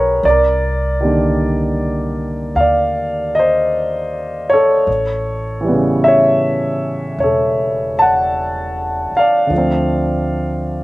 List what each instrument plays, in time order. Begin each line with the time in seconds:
Already playing: upright bass B1, grand piano F3 G3 B3 D#4 G#4 A#4 B4 C#5
0.23 upright bass C2, grand piano D5
0.30 grand piano A#4
1.01 grand piano D#3 G3 A#3
1.06 grand piano D3
2.55 upright bass D#2, grand piano F5
2.61 grand piano D5
3.35 grand piano D#5
3.39 grand piano C5
4.50 grand piano A4 C#5
4.87 upright bass A1
5.61 grand piano E3 G3
5.68 grand piano C#3 B3
6.04 grand piano C#5 E5
7.18 upright bass E1, grand piano C#5
7.24 grand piano A4
7.99 grand piano F#5 A5
9.12 muted upright bass stroke
9.17 grand piano D5 F5
9.47 upright bass D2, grand piano D3 F3
9.54 grand piano A3 C4